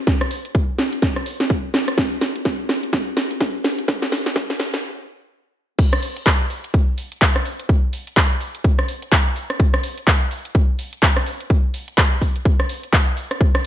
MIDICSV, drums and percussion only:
0, 0, Header, 1, 2, 480
1, 0, Start_track
1, 0, Tempo, 476190
1, 74, Time_signature, 4, 2, 24, 8
1, 13774, End_track
2, 0, Start_track
2, 0, Title_t, "Drums"
2, 72, Note_on_c, 9, 36, 118
2, 72, Note_on_c, 9, 38, 58
2, 72, Note_on_c, 9, 42, 67
2, 172, Note_off_c, 9, 36, 0
2, 173, Note_off_c, 9, 38, 0
2, 173, Note_off_c, 9, 42, 0
2, 213, Note_on_c, 9, 37, 78
2, 311, Note_on_c, 9, 46, 108
2, 314, Note_off_c, 9, 37, 0
2, 412, Note_off_c, 9, 46, 0
2, 453, Note_on_c, 9, 42, 54
2, 552, Note_off_c, 9, 42, 0
2, 552, Note_on_c, 9, 36, 127
2, 552, Note_on_c, 9, 42, 67
2, 653, Note_off_c, 9, 36, 0
2, 653, Note_off_c, 9, 42, 0
2, 792, Note_on_c, 9, 38, 62
2, 792, Note_on_c, 9, 46, 106
2, 892, Note_off_c, 9, 38, 0
2, 892, Note_off_c, 9, 46, 0
2, 933, Note_on_c, 9, 42, 53
2, 1031, Note_off_c, 9, 42, 0
2, 1031, Note_on_c, 9, 38, 63
2, 1031, Note_on_c, 9, 42, 63
2, 1032, Note_on_c, 9, 36, 117
2, 1132, Note_off_c, 9, 38, 0
2, 1132, Note_off_c, 9, 42, 0
2, 1133, Note_off_c, 9, 36, 0
2, 1173, Note_on_c, 9, 37, 62
2, 1271, Note_on_c, 9, 46, 108
2, 1274, Note_off_c, 9, 37, 0
2, 1372, Note_off_c, 9, 46, 0
2, 1413, Note_on_c, 9, 38, 60
2, 1413, Note_on_c, 9, 42, 51
2, 1512, Note_off_c, 9, 42, 0
2, 1512, Note_on_c, 9, 36, 124
2, 1512, Note_on_c, 9, 42, 66
2, 1514, Note_off_c, 9, 38, 0
2, 1613, Note_off_c, 9, 36, 0
2, 1613, Note_off_c, 9, 42, 0
2, 1753, Note_on_c, 9, 38, 73
2, 1753, Note_on_c, 9, 46, 107
2, 1854, Note_off_c, 9, 38, 0
2, 1854, Note_off_c, 9, 46, 0
2, 1895, Note_on_c, 9, 37, 64
2, 1895, Note_on_c, 9, 42, 54
2, 1993, Note_off_c, 9, 42, 0
2, 1993, Note_on_c, 9, 36, 127
2, 1993, Note_on_c, 9, 38, 74
2, 1993, Note_on_c, 9, 42, 64
2, 1995, Note_off_c, 9, 37, 0
2, 2093, Note_off_c, 9, 36, 0
2, 2094, Note_off_c, 9, 38, 0
2, 2094, Note_off_c, 9, 42, 0
2, 2232, Note_on_c, 9, 38, 76
2, 2232, Note_on_c, 9, 46, 109
2, 2333, Note_off_c, 9, 38, 0
2, 2333, Note_off_c, 9, 46, 0
2, 2374, Note_on_c, 9, 42, 52
2, 2472, Note_off_c, 9, 42, 0
2, 2472, Note_on_c, 9, 38, 79
2, 2472, Note_on_c, 9, 42, 65
2, 2473, Note_on_c, 9, 36, 127
2, 2573, Note_off_c, 9, 38, 0
2, 2573, Note_off_c, 9, 42, 0
2, 2574, Note_off_c, 9, 36, 0
2, 2713, Note_on_c, 9, 38, 80
2, 2713, Note_on_c, 9, 46, 107
2, 2814, Note_off_c, 9, 38, 0
2, 2814, Note_off_c, 9, 46, 0
2, 2855, Note_on_c, 9, 42, 51
2, 2953, Note_off_c, 9, 42, 0
2, 2953, Note_on_c, 9, 36, 123
2, 2953, Note_on_c, 9, 38, 81
2, 2953, Note_on_c, 9, 42, 61
2, 3053, Note_off_c, 9, 36, 0
2, 3054, Note_off_c, 9, 38, 0
2, 3054, Note_off_c, 9, 42, 0
2, 3193, Note_on_c, 9, 38, 84
2, 3193, Note_on_c, 9, 46, 111
2, 3294, Note_off_c, 9, 38, 0
2, 3294, Note_off_c, 9, 46, 0
2, 3334, Note_on_c, 9, 42, 50
2, 3433, Note_off_c, 9, 42, 0
2, 3433, Note_on_c, 9, 36, 127
2, 3433, Note_on_c, 9, 38, 88
2, 3433, Note_on_c, 9, 42, 64
2, 3533, Note_off_c, 9, 36, 0
2, 3534, Note_off_c, 9, 38, 0
2, 3534, Note_off_c, 9, 42, 0
2, 3673, Note_on_c, 9, 38, 87
2, 3673, Note_on_c, 9, 46, 111
2, 3774, Note_off_c, 9, 38, 0
2, 3774, Note_off_c, 9, 46, 0
2, 3815, Note_on_c, 9, 42, 53
2, 3913, Note_on_c, 9, 36, 123
2, 3915, Note_off_c, 9, 42, 0
2, 3915, Note_on_c, 9, 38, 92
2, 3915, Note_on_c, 9, 42, 65
2, 4013, Note_off_c, 9, 36, 0
2, 4015, Note_off_c, 9, 38, 0
2, 4015, Note_off_c, 9, 42, 0
2, 4055, Note_on_c, 9, 38, 83
2, 4155, Note_off_c, 9, 38, 0
2, 4155, Note_on_c, 9, 38, 95
2, 4155, Note_on_c, 9, 46, 111
2, 4255, Note_off_c, 9, 38, 0
2, 4255, Note_off_c, 9, 46, 0
2, 4297, Note_on_c, 9, 38, 83
2, 4297, Note_on_c, 9, 42, 51
2, 4393, Note_on_c, 9, 36, 126
2, 4395, Note_off_c, 9, 38, 0
2, 4395, Note_off_c, 9, 42, 0
2, 4395, Note_on_c, 9, 38, 101
2, 4395, Note_on_c, 9, 42, 66
2, 4493, Note_off_c, 9, 36, 0
2, 4496, Note_off_c, 9, 38, 0
2, 4496, Note_off_c, 9, 42, 0
2, 4536, Note_on_c, 9, 38, 85
2, 4633, Note_off_c, 9, 38, 0
2, 4633, Note_on_c, 9, 38, 101
2, 4633, Note_on_c, 9, 46, 110
2, 4734, Note_off_c, 9, 38, 0
2, 4734, Note_off_c, 9, 46, 0
2, 4775, Note_on_c, 9, 38, 92
2, 4775, Note_on_c, 9, 42, 51
2, 4876, Note_off_c, 9, 38, 0
2, 4876, Note_off_c, 9, 42, 0
2, 5833, Note_on_c, 9, 36, 119
2, 5834, Note_on_c, 9, 42, 71
2, 5834, Note_on_c, 9, 49, 106
2, 5934, Note_off_c, 9, 36, 0
2, 5935, Note_off_c, 9, 42, 0
2, 5935, Note_off_c, 9, 49, 0
2, 5975, Note_on_c, 9, 37, 86
2, 6074, Note_on_c, 9, 46, 109
2, 6076, Note_off_c, 9, 37, 0
2, 6175, Note_off_c, 9, 46, 0
2, 6215, Note_on_c, 9, 42, 57
2, 6313, Note_on_c, 9, 36, 123
2, 6314, Note_off_c, 9, 42, 0
2, 6314, Note_on_c, 9, 42, 70
2, 6318, Note_on_c, 9, 39, 122
2, 6414, Note_off_c, 9, 36, 0
2, 6415, Note_off_c, 9, 42, 0
2, 6419, Note_off_c, 9, 39, 0
2, 6554, Note_on_c, 9, 46, 106
2, 6654, Note_off_c, 9, 46, 0
2, 6696, Note_on_c, 9, 42, 56
2, 6793, Note_on_c, 9, 36, 119
2, 6794, Note_off_c, 9, 42, 0
2, 6794, Note_on_c, 9, 42, 67
2, 6894, Note_off_c, 9, 36, 0
2, 6895, Note_off_c, 9, 42, 0
2, 7034, Note_on_c, 9, 46, 108
2, 7134, Note_off_c, 9, 46, 0
2, 7175, Note_on_c, 9, 42, 54
2, 7273, Note_on_c, 9, 36, 119
2, 7274, Note_off_c, 9, 42, 0
2, 7274, Note_on_c, 9, 42, 70
2, 7278, Note_on_c, 9, 39, 127
2, 7374, Note_off_c, 9, 36, 0
2, 7375, Note_off_c, 9, 42, 0
2, 7378, Note_off_c, 9, 39, 0
2, 7416, Note_on_c, 9, 37, 77
2, 7515, Note_on_c, 9, 46, 107
2, 7517, Note_off_c, 9, 37, 0
2, 7616, Note_off_c, 9, 46, 0
2, 7657, Note_on_c, 9, 42, 56
2, 7753, Note_on_c, 9, 36, 124
2, 7754, Note_off_c, 9, 42, 0
2, 7754, Note_on_c, 9, 42, 70
2, 7854, Note_off_c, 9, 36, 0
2, 7855, Note_off_c, 9, 42, 0
2, 7994, Note_on_c, 9, 46, 112
2, 8095, Note_off_c, 9, 46, 0
2, 8136, Note_on_c, 9, 42, 54
2, 8233, Note_on_c, 9, 36, 127
2, 8234, Note_off_c, 9, 42, 0
2, 8234, Note_on_c, 9, 42, 68
2, 8238, Note_on_c, 9, 39, 127
2, 8334, Note_off_c, 9, 36, 0
2, 8335, Note_off_c, 9, 42, 0
2, 8339, Note_off_c, 9, 39, 0
2, 8474, Note_on_c, 9, 46, 109
2, 8575, Note_off_c, 9, 46, 0
2, 8616, Note_on_c, 9, 42, 55
2, 8713, Note_on_c, 9, 36, 122
2, 8715, Note_off_c, 9, 42, 0
2, 8715, Note_on_c, 9, 42, 67
2, 8814, Note_off_c, 9, 36, 0
2, 8816, Note_off_c, 9, 42, 0
2, 8857, Note_on_c, 9, 37, 68
2, 8955, Note_on_c, 9, 46, 110
2, 8958, Note_off_c, 9, 37, 0
2, 9056, Note_off_c, 9, 46, 0
2, 9097, Note_on_c, 9, 42, 53
2, 9193, Note_on_c, 9, 36, 126
2, 9195, Note_off_c, 9, 42, 0
2, 9195, Note_on_c, 9, 42, 68
2, 9198, Note_on_c, 9, 39, 122
2, 9294, Note_off_c, 9, 36, 0
2, 9295, Note_off_c, 9, 42, 0
2, 9299, Note_off_c, 9, 39, 0
2, 9434, Note_on_c, 9, 46, 109
2, 9535, Note_off_c, 9, 46, 0
2, 9576, Note_on_c, 9, 37, 66
2, 9576, Note_on_c, 9, 42, 56
2, 9673, Note_on_c, 9, 36, 126
2, 9674, Note_off_c, 9, 42, 0
2, 9674, Note_on_c, 9, 42, 68
2, 9677, Note_off_c, 9, 37, 0
2, 9774, Note_off_c, 9, 36, 0
2, 9775, Note_off_c, 9, 42, 0
2, 9815, Note_on_c, 9, 37, 81
2, 9913, Note_on_c, 9, 46, 113
2, 9916, Note_off_c, 9, 37, 0
2, 10014, Note_off_c, 9, 46, 0
2, 10055, Note_on_c, 9, 42, 52
2, 10153, Note_on_c, 9, 36, 127
2, 10154, Note_off_c, 9, 42, 0
2, 10154, Note_on_c, 9, 42, 65
2, 10158, Note_on_c, 9, 39, 124
2, 10254, Note_off_c, 9, 36, 0
2, 10255, Note_off_c, 9, 42, 0
2, 10258, Note_off_c, 9, 39, 0
2, 10394, Note_on_c, 9, 46, 111
2, 10495, Note_off_c, 9, 46, 0
2, 10536, Note_on_c, 9, 42, 53
2, 10633, Note_on_c, 9, 36, 127
2, 10634, Note_off_c, 9, 42, 0
2, 10634, Note_on_c, 9, 42, 63
2, 10734, Note_off_c, 9, 36, 0
2, 10735, Note_off_c, 9, 42, 0
2, 10874, Note_on_c, 9, 46, 111
2, 10975, Note_off_c, 9, 46, 0
2, 11015, Note_on_c, 9, 42, 53
2, 11113, Note_off_c, 9, 42, 0
2, 11113, Note_on_c, 9, 36, 126
2, 11113, Note_on_c, 9, 42, 64
2, 11117, Note_on_c, 9, 39, 124
2, 11214, Note_off_c, 9, 36, 0
2, 11214, Note_off_c, 9, 42, 0
2, 11218, Note_off_c, 9, 39, 0
2, 11255, Note_on_c, 9, 37, 76
2, 11354, Note_on_c, 9, 46, 114
2, 11356, Note_off_c, 9, 37, 0
2, 11455, Note_off_c, 9, 46, 0
2, 11496, Note_on_c, 9, 42, 53
2, 11593, Note_off_c, 9, 42, 0
2, 11593, Note_on_c, 9, 36, 125
2, 11593, Note_on_c, 9, 42, 65
2, 11694, Note_off_c, 9, 36, 0
2, 11694, Note_off_c, 9, 42, 0
2, 11834, Note_on_c, 9, 46, 111
2, 11935, Note_off_c, 9, 46, 0
2, 11974, Note_on_c, 9, 42, 53
2, 12073, Note_off_c, 9, 42, 0
2, 12073, Note_on_c, 9, 36, 127
2, 12073, Note_on_c, 9, 42, 63
2, 12077, Note_on_c, 9, 39, 123
2, 12174, Note_off_c, 9, 36, 0
2, 12174, Note_off_c, 9, 42, 0
2, 12177, Note_off_c, 9, 39, 0
2, 12313, Note_on_c, 9, 36, 62
2, 12314, Note_on_c, 9, 46, 108
2, 12414, Note_off_c, 9, 36, 0
2, 12415, Note_off_c, 9, 46, 0
2, 12456, Note_on_c, 9, 42, 52
2, 12554, Note_on_c, 9, 36, 125
2, 12555, Note_off_c, 9, 42, 0
2, 12555, Note_on_c, 9, 42, 63
2, 12655, Note_off_c, 9, 36, 0
2, 12655, Note_off_c, 9, 42, 0
2, 12697, Note_on_c, 9, 37, 66
2, 12795, Note_on_c, 9, 46, 113
2, 12798, Note_off_c, 9, 37, 0
2, 12896, Note_off_c, 9, 46, 0
2, 12937, Note_on_c, 9, 42, 52
2, 13034, Note_on_c, 9, 36, 127
2, 13035, Note_off_c, 9, 42, 0
2, 13035, Note_on_c, 9, 42, 63
2, 13039, Note_on_c, 9, 39, 115
2, 13134, Note_off_c, 9, 36, 0
2, 13136, Note_off_c, 9, 42, 0
2, 13139, Note_off_c, 9, 39, 0
2, 13275, Note_on_c, 9, 46, 107
2, 13375, Note_off_c, 9, 46, 0
2, 13417, Note_on_c, 9, 37, 64
2, 13417, Note_on_c, 9, 42, 52
2, 13514, Note_on_c, 9, 36, 121
2, 13515, Note_off_c, 9, 42, 0
2, 13515, Note_on_c, 9, 42, 65
2, 13518, Note_off_c, 9, 37, 0
2, 13614, Note_off_c, 9, 36, 0
2, 13616, Note_off_c, 9, 42, 0
2, 13657, Note_on_c, 9, 37, 85
2, 13758, Note_off_c, 9, 37, 0
2, 13774, End_track
0, 0, End_of_file